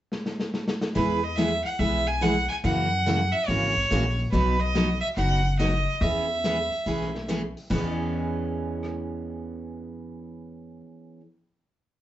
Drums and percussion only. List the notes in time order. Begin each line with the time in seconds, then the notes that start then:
0.12 snare
0.26 snare
0.40 snare
0.54 snare
0.68 snare
0.81 snare
0.95 open hi-hat
1.38 snare, closed hi-hat
1.66 open hi-hat
1.80 open hi-hat
2.23 snare, closed hi-hat
2.50 open hi-hat
2.65 open hi-hat
3.07 snare, closed hi-hat
3.35 open hi-hat
3.49 open hi-hat
3.77 kick
3.91 snare, closed hi-hat
4.19 open hi-hat
4.33 open hi-hat
4.75 snare, closed hi-hat
5.04 open hi-hat
5.18 open hi-hat
5.59 snare, closed hi-hat
6.02 open hi-hat
6.44 snare, closed hi-hat
6.72 open hi-hat
6.86 open hi-hat
7.01 snare
7.15 snare
7.29 snare, closed hi-hat
7.57 open hi-hat
7.71 kick, crash
8.83 cross-stick